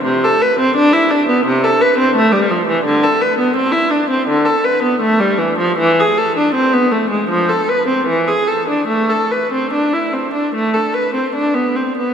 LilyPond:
\new Staff \with { instrumentName = "Viola" } { \time 4/4 \key a \minor \tempo 4 = 80 c16 a'16 b'16 c'16 d'16 e'16 d'16 b16 c16 a'16 b'16 c'16 a16 g16 f16 e16 | d16 a'16 b'16 b16 c'16 e'16 d'16 c'16 d16 a'16 b'16 b16 a16 g16 e16 f16 | e16 gis'16 a'16 d'16 c'16 b16 a16 gis16 f16 a'16 b'16 c'16 e16 gis'16 a'16 d'16 | a16 a'16 b'16 c'16 d'16 e'16 c'16 d'16 a16 a'16 b'16 c'16 d'16 b16 c'16 b16 | }